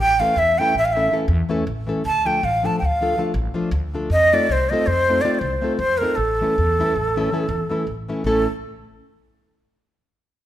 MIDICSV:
0, 0, Header, 1, 4, 480
1, 0, Start_track
1, 0, Tempo, 376176
1, 2622, Time_signature, 11, 3, 24, 8
1, 13335, End_track
2, 0, Start_track
2, 0, Title_t, "Ney"
2, 0, Program_c, 0, 77
2, 0, Note_on_c, 0, 79, 127
2, 251, Note_on_c, 0, 77, 110
2, 271, Note_off_c, 0, 79, 0
2, 488, Note_on_c, 0, 76, 106
2, 507, Note_off_c, 0, 77, 0
2, 745, Note_on_c, 0, 79, 106
2, 764, Note_off_c, 0, 76, 0
2, 965, Note_off_c, 0, 79, 0
2, 999, Note_on_c, 0, 76, 105
2, 1087, Note_on_c, 0, 77, 84
2, 1107, Note_off_c, 0, 76, 0
2, 1184, Note_on_c, 0, 76, 97
2, 1203, Note_off_c, 0, 77, 0
2, 1442, Note_off_c, 0, 76, 0
2, 2628, Note_on_c, 0, 81, 125
2, 2886, Note_on_c, 0, 79, 99
2, 2906, Note_off_c, 0, 81, 0
2, 3120, Note_on_c, 0, 77, 97
2, 3139, Note_off_c, 0, 79, 0
2, 3388, Note_on_c, 0, 81, 83
2, 3407, Note_off_c, 0, 77, 0
2, 3528, Note_off_c, 0, 81, 0
2, 3559, Note_on_c, 0, 79, 67
2, 3641, Note_on_c, 0, 77, 83
2, 3660, Note_off_c, 0, 79, 0
2, 4083, Note_off_c, 0, 77, 0
2, 5260, Note_on_c, 0, 75, 127
2, 5532, Note_on_c, 0, 74, 114
2, 5551, Note_off_c, 0, 75, 0
2, 5765, Note_on_c, 0, 72, 97
2, 5784, Note_off_c, 0, 74, 0
2, 5994, Note_on_c, 0, 75, 99
2, 6013, Note_off_c, 0, 72, 0
2, 6210, Note_on_c, 0, 72, 114
2, 6229, Note_off_c, 0, 75, 0
2, 6652, Note_on_c, 0, 74, 102
2, 6671, Note_off_c, 0, 72, 0
2, 6820, Note_off_c, 0, 74, 0
2, 6820, Note_on_c, 0, 74, 82
2, 6877, Note_on_c, 0, 72, 81
2, 6896, Note_off_c, 0, 74, 0
2, 7351, Note_off_c, 0, 72, 0
2, 7359, Note_on_c, 0, 72, 116
2, 7629, Note_on_c, 0, 70, 108
2, 7648, Note_off_c, 0, 72, 0
2, 7854, Note_on_c, 0, 69, 99
2, 7874, Note_off_c, 0, 70, 0
2, 10023, Note_off_c, 0, 69, 0
2, 10532, Note_on_c, 0, 69, 86
2, 10792, Note_off_c, 0, 69, 0
2, 13335, End_track
3, 0, Start_track
3, 0, Title_t, "Nylon-string guitar"
3, 0, Program_c, 1, 24
3, 248, Note_on_c, 1, 52, 71
3, 256, Note_on_c, 1, 57, 61
3, 261, Note_on_c, 1, 61, 66
3, 266, Note_on_c, 1, 64, 58
3, 274, Note_on_c, 1, 69, 81
3, 426, Note_off_c, 1, 52, 0
3, 430, Note_off_c, 1, 57, 0
3, 432, Note_off_c, 1, 61, 0
3, 435, Note_off_c, 1, 64, 0
3, 439, Note_off_c, 1, 69, 0
3, 756, Note_on_c, 1, 52, 84
3, 762, Note_on_c, 1, 57, 74
3, 762, Note_on_c, 1, 61, 78
3, 776, Note_on_c, 1, 69, 81
3, 777, Note_on_c, 1, 64, 69
3, 927, Note_off_c, 1, 52, 0
3, 929, Note_off_c, 1, 57, 0
3, 930, Note_off_c, 1, 61, 0
3, 935, Note_off_c, 1, 64, 0
3, 937, Note_off_c, 1, 69, 0
3, 1212, Note_on_c, 1, 52, 68
3, 1226, Note_on_c, 1, 57, 66
3, 1230, Note_on_c, 1, 61, 61
3, 1234, Note_on_c, 1, 69, 74
3, 1241, Note_on_c, 1, 64, 60
3, 1381, Note_off_c, 1, 52, 0
3, 1388, Note_off_c, 1, 57, 0
3, 1390, Note_off_c, 1, 61, 0
3, 1392, Note_off_c, 1, 69, 0
3, 1395, Note_off_c, 1, 64, 0
3, 1427, Note_on_c, 1, 52, 62
3, 1432, Note_on_c, 1, 57, 54
3, 1438, Note_on_c, 1, 64, 58
3, 1441, Note_on_c, 1, 61, 61
3, 1447, Note_on_c, 1, 69, 83
3, 1594, Note_off_c, 1, 52, 0
3, 1596, Note_off_c, 1, 57, 0
3, 1598, Note_off_c, 1, 64, 0
3, 1601, Note_off_c, 1, 61, 0
3, 1604, Note_off_c, 1, 69, 0
3, 1898, Note_on_c, 1, 52, 80
3, 1906, Note_on_c, 1, 57, 79
3, 1909, Note_on_c, 1, 61, 63
3, 1912, Note_on_c, 1, 64, 64
3, 1922, Note_on_c, 1, 69, 89
3, 2079, Note_off_c, 1, 52, 0
3, 2082, Note_off_c, 1, 57, 0
3, 2084, Note_off_c, 1, 64, 0
3, 2085, Note_off_c, 1, 61, 0
3, 2091, Note_off_c, 1, 69, 0
3, 2382, Note_on_c, 1, 52, 77
3, 2387, Note_on_c, 1, 57, 71
3, 2403, Note_on_c, 1, 61, 54
3, 2411, Note_on_c, 1, 64, 63
3, 2411, Note_on_c, 1, 69, 79
3, 2567, Note_off_c, 1, 52, 0
3, 2570, Note_off_c, 1, 57, 0
3, 2578, Note_off_c, 1, 61, 0
3, 2581, Note_off_c, 1, 64, 0
3, 2582, Note_off_c, 1, 69, 0
3, 2864, Note_on_c, 1, 53, 70
3, 2873, Note_on_c, 1, 57, 61
3, 2877, Note_on_c, 1, 62, 63
3, 2879, Note_on_c, 1, 65, 64
3, 2888, Note_on_c, 1, 69, 66
3, 3056, Note_off_c, 1, 53, 0
3, 3060, Note_off_c, 1, 57, 0
3, 3061, Note_off_c, 1, 62, 0
3, 3063, Note_off_c, 1, 65, 0
3, 3068, Note_off_c, 1, 69, 0
3, 3357, Note_on_c, 1, 53, 83
3, 3363, Note_on_c, 1, 57, 68
3, 3369, Note_on_c, 1, 62, 81
3, 3369, Note_on_c, 1, 65, 75
3, 3378, Note_on_c, 1, 69, 91
3, 3548, Note_off_c, 1, 53, 0
3, 3552, Note_off_c, 1, 57, 0
3, 3554, Note_off_c, 1, 65, 0
3, 3555, Note_off_c, 1, 62, 0
3, 3556, Note_off_c, 1, 69, 0
3, 3832, Note_on_c, 1, 53, 65
3, 3839, Note_on_c, 1, 57, 65
3, 3845, Note_on_c, 1, 62, 60
3, 3856, Note_on_c, 1, 65, 66
3, 3863, Note_on_c, 1, 69, 84
3, 4013, Note_off_c, 1, 53, 0
3, 4016, Note_off_c, 1, 57, 0
3, 4020, Note_off_c, 1, 62, 0
3, 4022, Note_off_c, 1, 65, 0
3, 4028, Note_off_c, 1, 69, 0
3, 4041, Note_on_c, 1, 53, 74
3, 4054, Note_on_c, 1, 57, 65
3, 4064, Note_on_c, 1, 62, 59
3, 4072, Note_on_c, 1, 65, 72
3, 4072, Note_on_c, 1, 69, 79
3, 4222, Note_off_c, 1, 53, 0
3, 4229, Note_off_c, 1, 57, 0
3, 4231, Note_off_c, 1, 62, 0
3, 4236, Note_off_c, 1, 69, 0
3, 4238, Note_off_c, 1, 65, 0
3, 4519, Note_on_c, 1, 53, 82
3, 4524, Note_on_c, 1, 57, 68
3, 4526, Note_on_c, 1, 62, 77
3, 4534, Note_on_c, 1, 65, 73
3, 4539, Note_on_c, 1, 69, 86
3, 4710, Note_off_c, 1, 53, 0
3, 4712, Note_off_c, 1, 57, 0
3, 4715, Note_off_c, 1, 62, 0
3, 4716, Note_off_c, 1, 69, 0
3, 4717, Note_off_c, 1, 65, 0
3, 5023, Note_on_c, 1, 53, 73
3, 5032, Note_on_c, 1, 57, 69
3, 5034, Note_on_c, 1, 62, 68
3, 5042, Note_on_c, 1, 65, 54
3, 5044, Note_on_c, 1, 69, 72
3, 5208, Note_off_c, 1, 53, 0
3, 5214, Note_off_c, 1, 57, 0
3, 5214, Note_off_c, 1, 62, 0
3, 5216, Note_off_c, 1, 65, 0
3, 5219, Note_off_c, 1, 69, 0
3, 5521, Note_on_c, 1, 57, 82
3, 5523, Note_on_c, 1, 60, 57
3, 5527, Note_on_c, 1, 65, 66
3, 5534, Note_on_c, 1, 63, 70
3, 5534, Note_on_c, 1, 69, 82
3, 5703, Note_off_c, 1, 60, 0
3, 5704, Note_off_c, 1, 57, 0
3, 5708, Note_off_c, 1, 63, 0
3, 5708, Note_off_c, 1, 65, 0
3, 5711, Note_off_c, 1, 69, 0
3, 6013, Note_on_c, 1, 57, 82
3, 6020, Note_on_c, 1, 60, 68
3, 6025, Note_on_c, 1, 63, 76
3, 6028, Note_on_c, 1, 65, 74
3, 6039, Note_on_c, 1, 69, 78
3, 6198, Note_off_c, 1, 57, 0
3, 6199, Note_off_c, 1, 60, 0
3, 6200, Note_off_c, 1, 63, 0
3, 6205, Note_off_c, 1, 65, 0
3, 6207, Note_off_c, 1, 69, 0
3, 6494, Note_on_c, 1, 57, 64
3, 6498, Note_on_c, 1, 60, 67
3, 6511, Note_on_c, 1, 63, 63
3, 6513, Note_on_c, 1, 65, 70
3, 6515, Note_on_c, 1, 69, 66
3, 6664, Note_off_c, 1, 57, 0
3, 6664, Note_off_c, 1, 60, 0
3, 6671, Note_off_c, 1, 63, 0
3, 6673, Note_off_c, 1, 65, 0
3, 6674, Note_off_c, 1, 69, 0
3, 6690, Note_on_c, 1, 57, 68
3, 6698, Note_on_c, 1, 60, 65
3, 6699, Note_on_c, 1, 63, 63
3, 6701, Note_on_c, 1, 65, 73
3, 6709, Note_on_c, 1, 69, 66
3, 6867, Note_off_c, 1, 57, 0
3, 6868, Note_off_c, 1, 60, 0
3, 6869, Note_off_c, 1, 63, 0
3, 6872, Note_off_c, 1, 65, 0
3, 6875, Note_off_c, 1, 69, 0
3, 7165, Note_on_c, 1, 57, 67
3, 7172, Note_on_c, 1, 60, 67
3, 7183, Note_on_c, 1, 63, 54
3, 7193, Note_on_c, 1, 65, 52
3, 7199, Note_on_c, 1, 69, 72
3, 7352, Note_off_c, 1, 57, 0
3, 7356, Note_off_c, 1, 60, 0
3, 7361, Note_off_c, 1, 63, 0
3, 7366, Note_off_c, 1, 65, 0
3, 7369, Note_off_c, 1, 69, 0
3, 7670, Note_on_c, 1, 57, 50
3, 7672, Note_on_c, 1, 60, 56
3, 7682, Note_on_c, 1, 65, 61
3, 7689, Note_on_c, 1, 63, 50
3, 7689, Note_on_c, 1, 69, 76
3, 7851, Note_off_c, 1, 57, 0
3, 7854, Note_off_c, 1, 60, 0
3, 7855, Note_off_c, 1, 65, 0
3, 7856, Note_off_c, 1, 63, 0
3, 7861, Note_off_c, 1, 69, 0
3, 8174, Note_on_c, 1, 52, 66
3, 8184, Note_on_c, 1, 57, 61
3, 8192, Note_on_c, 1, 61, 59
3, 8197, Note_on_c, 1, 69, 73
3, 8199, Note_on_c, 1, 64, 70
3, 8350, Note_off_c, 1, 52, 0
3, 8353, Note_off_c, 1, 57, 0
3, 8359, Note_off_c, 1, 64, 0
3, 8360, Note_off_c, 1, 61, 0
3, 8360, Note_off_c, 1, 69, 0
3, 8664, Note_on_c, 1, 52, 94
3, 8673, Note_on_c, 1, 57, 84
3, 8680, Note_on_c, 1, 61, 90
3, 8686, Note_on_c, 1, 64, 82
3, 8687, Note_on_c, 1, 69, 97
3, 8841, Note_off_c, 1, 52, 0
3, 8845, Note_off_c, 1, 57, 0
3, 8850, Note_off_c, 1, 61, 0
3, 8851, Note_off_c, 1, 64, 0
3, 8852, Note_off_c, 1, 69, 0
3, 9136, Note_on_c, 1, 52, 88
3, 9141, Note_on_c, 1, 57, 81
3, 9152, Note_on_c, 1, 61, 81
3, 9153, Note_on_c, 1, 64, 64
3, 9157, Note_on_c, 1, 69, 97
3, 9303, Note_off_c, 1, 52, 0
3, 9305, Note_off_c, 1, 57, 0
3, 9311, Note_off_c, 1, 61, 0
3, 9311, Note_off_c, 1, 64, 0
3, 9314, Note_off_c, 1, 69, 0
3, 9342, Note_on_c, 1, 52, 81
3, 9352, Note_on_c, 1, 57, 61
3, 9357, Note_on_c, 1, 61, 72
3, 9360, Note_on_c, 1, 64, 68
3, 9367, Note_on_c, 1, 69, 91
3, 9512, Note_off_c, 1, 52, 0
3, 9515, Note_off_c, 1, 57, 0
3, 9515, Note_off_c, 1, 61, 0
3, 9520, Note_off_c, 1, 64, 0
3, 9523, Note_off_c, 1, 69, 0
3, 9819, Note_on_c, 1, 52, 74
3, 9830, Note_on_c, 1, 57, 58
3, 9833, Note_on_c, 1, 61, 72
3, 9841, Note_on_c, 1, 69, 70
3, 9843, Note_on_c, 1, 64, 68
3, 9998, Note_off_c, 1, 52, 0
3, 10004, Note_off_c, 1, 61, 0
3, 10005, Note_off_c, 1, 57, 0
3, 10010, Note_off_c, 1, 64, 0
3, 10010, Note_off_c, 1, 69, 0
3, 10316, Note_on_c, 1, 52, 68
3, 10322, Note_on_c, 1, 57, 64
3, 10327, Note_on_c, 1, 61, 65
3, 10331, Note_on_c, 1, 64, 60
3, 10333, Note_on_c, 1, 69, 66
3, 10493, Note_off_c, 1, 52, 0
3, 10496, Note_off_c, 1, 57, 0
3, 10498, Note_off_c, 1, 61, 0
3, 10500, Note_off_c, 1, 64, 0
3, 10502, Note_off_c, 1, 69, 0
3, 10545, Note_on_c, 1, 61, 84
3, 10548, Note_on_c, 1, 57, 87
3, 10549, Note_on_c, 1, 64, 82
3, 10549, Note_on_c, 1, 69, 104
3, 10799, Note_off_c, 1, 61, 0
3, 10800, Note_off_c, 1, 64, 0
3, 10801, Note_off_c, 1, 69, 0
3, 10802, Note_off_c, 1, 57, 0
3, 13335, End_track
4, 0, Start_track
4, 0, Title_t, "Upright bass"
4, 0, Program_c, 2, 32
4, 0, Note_on_c, 2, 33, 92
4, 272, Note_off_c, 2, 33, 0
4, 460, Note_on_c, 2, 40, 106
4, 761, Note_off_c, 2, 40, 0
4, 952, Note_on_c, 2, 33, 92
4, 1358, Note_off_c, 2, 33, 0
4, 1632, Note_on_c, 2, 40, 120
4, 1799, Note_off_c, 2, 40, 0
4, 2128, Note_on_c, 2, 33, 112
4, 2425, Note_off_c, 2, 33, 0
4, 2616, Note_on_c, 2, 38, 107
4, 2914, Note_off_c, 2, 38, 0
4, 3103, Note_on_c, 2, 33, 111
4, 3403, Note_off_c, 2, 33, 0
4, 3599, Note_on_c, 2, 38, 90
4, 4003, Note_off_c, 2, 38, 0
4, 4262, Note_on_c, 2, 33, 112
4, 4432, Note_off_c, 2, 33, 0
4, 4739, Note_on_c, 2, 38, 121
4, 5044, Note_off_c, 2, 38, 0
4, 5228, Note_on_c, 2, 41, 104
4, 5535, Note_off_c, 2, 41, 0
4, 5731, Note_on_c, 2, 36, 98
4, 6034, Note_off_c, 2, 36, 0
4, 6214, Note_on_c, 2, 41, 99
4, 6624, Note_off_c, 2, 41, 0
4, 6905, Note_on_c, 2, 36, 110
4, 7074, Note_off_c, 2, 36, 0
4, 7384, Note_on_c, 2, 41, 106
4, 7688, Note_off_c, 2, 41, 0
4, 7875, Note_on_c, 2, 33, 91
4, 8179, Note_off_c, 2, 33, 0
4, 8396, Note_on_c, 2, 40, 102
4, 8691, Note_off_c, 2, 40, 0
4, 8873, Note_on_c, 2, 33, 88
4, 9277, Note_off_c, 2, 33, 0
4, 9553, Note_on_c, 2, 40, 116
4, 9719, Note_off_c, 2, 40, 0
4, 10038, Note_on_c, 2, 33, 89
4, 10337, Note_off_c, 2, 33, 0
4, 10516, Note_on_c, 2, 33, 95
4, 10784, Note_off_c, 2, 33, 0
4, 13335, End_track
0, 0, End_of_file